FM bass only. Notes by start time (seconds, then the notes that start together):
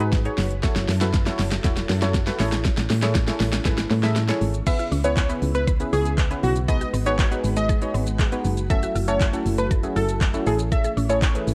Already playing: G#2
0.38 F#1
0.76 F#1
0.89 F#2
1.39 F#1
1.64 E1
1.89 F#2
2.40 A1
2.78 A1
2.90 A2
3.41 A1
3.66 G#1
3.91 A2
4.42 G#1
4.92 C#2
5.42 C#2
5.93 C#2
6.43 B1
6.94 G#1
7.44 G#1
7.95 G#1
8.45 F#1
8.95 F#1
9.46 F#1
9.96 F#1
10.47 A1
10.97 A1
11.47 A1